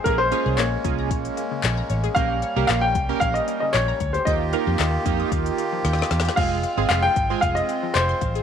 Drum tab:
CC |------------------------------------------------|------------------------------------------------|------------------------------------------------|x-----------------------------------------------|
HH |x-----x-----x-----x-----x--x--x-----x-----x--x--|x-----x-----x-----x-----x--x--x-----x-----x--x--|x-----x-----x-----x-----x--x--x-----x-----x--x--|------x-----x-----x-----x--x--x-----x-----x--x--|
CP |------------x-----------------------x-----------|------------x-----------------------x-----------|------------x-----------------------------------|------------x-----------------------x-----------|
SD |------------o-----------------------o-----------|------------o-----------------------o-----------|------------o-----------------------o-o-o-o-o-o-|------------o-----------------------o-----------|
BD |o-----------------o-----o-----------------------|o-----------------o-----o-----------------o-----|o-----------------o-----o-----------------------|o-----------------o-----o-----------------o-----|